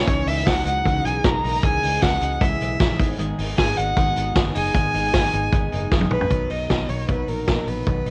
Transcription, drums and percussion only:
0.08 kick, hi-hat pedal, open hi-hat
0.27 hi-hat pedal, open hi-hat
0.47 kick, snare, hi-hat pedal, open hi-hat
0.66 hi-hat pedal, open hi-hat
0.85 kick, hi-hat pedal, open hi-hat
1.05 hi-hat pedal, open hi-hat
1.24 kick, snare, hi-hat pedal, open hi-hat
1.44 hi-hat pedal, open hi-hat
1.63 kick, hi-hat pedal, open hi-hat
1.83 hi-hat pedal, open hi-hat
2.02 kick, snare, hi-hat pedal, open hi-hat
2.21 hi-hat pedal, open hi-hat
2.41 kick, hi-hat pedal, open hi-hat
2.61 hi-hat pedal, open hi-hat
2.80 kick, snare, hi-hat pedal, open hi-hat
3.00 kick, hi-hat pedal, open hi-hat
3.19 hi-hat pedal, open hi-hat
3.39 hi-hat pedal, open hi-hat
3.58 kick, snare, hi-hat pedal, open hi-hat
3.77 hi-hat pedal, open hi-hat
3.97 kick, hi-hat pedal, open hi-hat
4.16 hi-hat pedal, open hi-hat
4.35 kick, snare, hi-hat pedal, open hi-hat
4.55 hi-hat pedal, open hi-hat
4.74 kick, hi-hat pedal, open hi-hat
4.94 hi-hat pedal, open hi-hat
5.13 kick, snare, hi-hat pedal, open hi-hat
5.32 hi-hat pedal, open hi-hat
5.52 kick, hi-hat pedal, open hi-hat
5.72 hi-hat pedal, open hi-hat
5.92 kick, snare
6.01 high tom
6.11 mid tom
6.21 floor tom
6.30 kick, closed hi-hat
6.50 open hi-hat
6.70 kick, snare, closed hi-hat
6.89 open hi-hat
7.09 kick, closed hi-hat
7.28 open hi-hat
7.47 kick, snare, closed hi-hat
7.68 open hi-hat
7.87 kick, closed hi-hat
8.06 open hi-hat

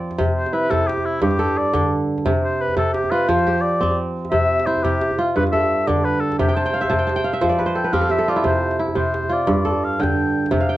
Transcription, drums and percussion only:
0.11 djembe slap
0.20 djembe tone, djembe bass
0.46 djembe slap
0.72 djembe slap, djembe bass
0.89 djembe slap
0.98 djembe tone
1.22 djembe bass
1.31 djembe slap
1.39 djembe tone
1.48 djembe slap
1.65 djembe slap
1.75 djembe slap, djembe bass
1.84 djembe tone
2.09 djembe slap
2.18 djembe slap
2.26 djembe tone, djembe bass
2.69 djembe tone
2.77 djembe slap, djembe bass
2.94 djembe slap
3.04 djembe tone
3.21 djembe slap
3.29 djembe bass
3.39 djembe slap
3.48 djembe tone
3.57 djembe slap
3.74 djembe slap
3.83 djembe slap, djembe bass
3.91 djembe tone
4.17 djembe slap
4.25 djembe slap
4.33 djembe tone, djembe bass
4.59 djembe slap
4.76 djembe tone
4.84 djembe slap, djembe bass
5.01 djembe slap
5.11 djembe tone
5.28 djembe slap
5.37 djembe bass
5.46 djembe slap
5.55 djembe tone
5.64 djembe slap
5.81 djembe slap
5.89 djembe slap, djembe bass
5.97 djembe tone
6.23 djembe slap
6.32 djembe slap
6.40 djembe slap, djembe tone, djembe bass
6.49 djembe slap
6.57 djembe slap
6.66 djembe slap
6.84 djembe tone
6.93 djembe bass
7.09 djembe slap
7.19 djembe tone
7.27 djembe slap
7.44 djembe bass
7.52 djembe slap
7.61 djembe tone
7.94 djembe slap, djembe bass
8.02 djembe tone
8.37 djembe slap
8.46 djembe tone, djembe bass
8.71 djembe slap
8.88 djembe tone
8.97 djembe slap, djembe bass
9.14 djembe slap
9.24 djembe tone
9.42 djembe slap
9.49 djembe bass
9.67 djembe tone
9.95 djembe slap
10.03 djembe slap, djembe bass
10.13 djembe tone
10.37 djembe slap
10.46 djembe slap
10.53 djembe tone, djembe bass

